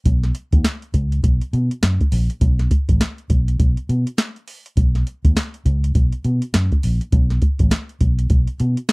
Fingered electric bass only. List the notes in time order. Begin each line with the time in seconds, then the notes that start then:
0.06 B1
0.53 D#2
0.94 C#2
1.24 B1
1.53 B2
1.83 F#2
2.12 A#1
2.41 B1
2.89 A1
3.30 B1
3.60 B1
3.89 B2
4.77 B1
5.25 D#2
5.66 C#2
5.95 B1
6.25 B2
6.54 F#2
6.84 A#1
7.13 B1
7.60 A1
8.01 B1
8.30 B1
8.60 B2